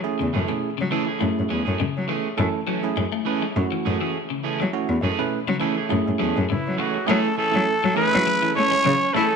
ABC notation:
X:1
M:4/4
L:1/16
Q:"Swing 16ths" 1/4=102
K:F#m
V:1 name="Trumpet"
z16 | z16 | z12 E2 F2 | A2 A4 B4 c4 A2 |]
V:2 name="Tine electric piano"
[A,CEG] z2 [A,CEG] z2 [A,CEA] z [A,CEG]4 z4 | [A,CEA] z2 [A,CEG] z2 [A,CEB] z [A,CEF]4 z4 | [A,CEF] z2 [A,CEB] z2 [A,CEA] z [A,CEG]4 z4 | [A,CEG] z2 [A,CEA] z2 [A,CEG]4 z4 [A,CEG] z |]
V:3 name="Clean electric guitar"
z2 [E,A,CG] z3 [E,A,CG] [A,CG] z2 [E,CG] [A,CG] z2 [E,A,CG] z | z2 [E,A,C] z3 [E,A,CG] z3 [E,A,CG] [A,CG] z2 [E,A,CG] z | z2 [E,A,CG] z3 [E,A,CG] [A,CG] z2 [E,A,CG] z3 [E,A,CG] z | [E,A,CG] z [E,A,CG] z3 [E,A,CG] z2 [A,C] [E,A,C] z3 [E,A,CG] z |]
V:4 name="Alto saxophone"
z16 | z16 | z12 E,2 F,2 | A,2 A,4 E4 C4 A,2 |]
V:5 name="Clean electric guitar" clef=bass
E, C,2 B,,2 C, E,2 A,2 F,2 C,2 E,2 | E,2 F,2 G, A,2 G,2 E,2 E,2 C,2 E,- | E, z2 B,,2 C, E,2 A,2 F,2 C,2 z2 | A,2 z E,2 F, E,2 F, E,2 G, F,2 A, z |]
V:6 name="Cello" clef=bass
z E,, F,,3 F,2 z F,, F,, E,, F,, F,, F,3 | F,,4 F,,2 z2 F,, z F,,4- F,, F,- | F, E,, F,,3 F,2 z F,, F,, E,, F,, F,, F,3 | F,3 F, z F, z F,3 A,2 C,2 E2 |]